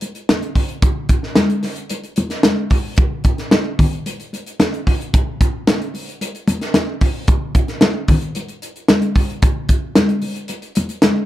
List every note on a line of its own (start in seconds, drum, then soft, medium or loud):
0.01 closed hi-hat medium
0.01 muted conga soft
0.15 closed hi-hat soft
0.29 snare loud
0.29 closed hi-hat medium
0.29 high conga medium
0.43 closed hi-hat soft
0.55 kick medium
0.55 open hi-hat medium
0.69 closed hi-hat soft
0.82 kick loud
0.82 closed hi-hat medium
0.82 muted conga soft
1.09 kick medium
1.09 closed hi-hat medium
1.23 snare soft
1.35 snare medium
1.35 closed hi-hat medium
1.35 high conga medium
1.50 closed hi-hat soft
1.63 snare soft
1.63 open hi-hat medium
1.63 muted conga soft
1.76 closed hi-hat soft
1.90 closed hi-hat medium
1.90 muted conga soft
2.04 closed hi-hat soft
2.16 closed hi-hat medium
2.16 muted conga soft
2.16 high conga medium
2.30 snare soft
2.30 closed hi-hat soft
2.43 snare loud
2.43 closed hi-hat medium
2.43 high conga medium
2.70 kick medium
2.70 open hi-hat medium
2.97 kick loud
2.97 closed hi-hat medium
2.97 muted conga soft
3.24 kick medium
3.24 closed hi-hat medium
3.38 snare soft
3.38 closed hi-hat soft
3.51 snare medium
3.51 closed hi-hat medium
3.51 high conga medium
3.79 kick medium
3.79 open hi-hat medium
3.79 muted conga soft
3.79 low conga medium
3.93 closed hi-hat soft
4.06 closed hi-hat medium
4.06 muted conga soft
4.20 closed hi-hat soft
4.33 closed hi-hat medium
4.33 muted conga soft
4.46 closed hi-hat soft
4.60 snare loud
4.60 closed hi-hat medium
4.60 high conga medium
4.74 closed hi-hat soft
4.87 kick medium
4.87 open hi-hat medium
5.01 closed hi-hat soft
5.13 kick loud
5.13 closed hi-hat medium
5.13 muted conga soft
5.41 kick medium
5.41 closed hi-hat medium
5.67 snare medium
5.67 closed hi-hat medium
5.67 high conga medium
5.82 closed hi-hat soft
5.94 open hi-hat medium
5.94 muted conga soft
6.09 closed hi-hat soft
6.21 closed hi-hat medium
6.21 muted conga soft
6.35 closed hi-hat soft
6.47 closed hi-hat medium
6.47 muted conga soft
6.47 high conga medium
6.61 snare soft
6.61 closed hi-hat soft
6.74 snare loud
6.74 closed hi-hat medium
6.74 high conga medium
7.01 kick medium
7.01 open hi-hat medium
7.28 kick loud
7.28 closed hi-hat medium
7.28 muted conga soft
7.55 kick medium
7.55 closed hi-hat medium
7.68 snare soft
7.68 closed hi-hat soft
7.81 snare medium
7.81 closed hi-hat medium
7.81 high conga medium
8.08 kick medium
8.08 open hi-hat medium
8.08 muted conga soft
8.08 low conga medium
8.22 closed hi-hat soft
8.35 closed hi-hat medium
8.35 muted conga soft
8.48 closed hi-hat soft
8.62 closed hi-hat medium
8.76 closed hi-hat soft
8.88 snare loud
8.88 closed hi-hat medium
8.88 high conga medium
9.02 closed hi-hat soft
9.15 kick medium
9.15 open hi-hat medium
9.30 closed hi-hat soft
9.42 kick loud
9.42 closed hi-hat medium
9.42 muted conga soft
9.69 kick medium
9.69 closed hi-hat medium
9.95 snare loud
9.95 closed hi-hat medium
9.95 high conga medium
10.09 closed hi-hat soft
10.22 open hi-hat medium
10.22 muted conga soft
10.36 closed hi-hat soft
10.48 closed hi-hat medium
10.48 muted conga soft
10.62 closed hi-hat soft
10.75 closed hi-hat medium
10.75 high conga medium
10.89 closed hi-hat soft
11.02 snare loud
11.02 closed hi-hat medium
11.02 high conga medium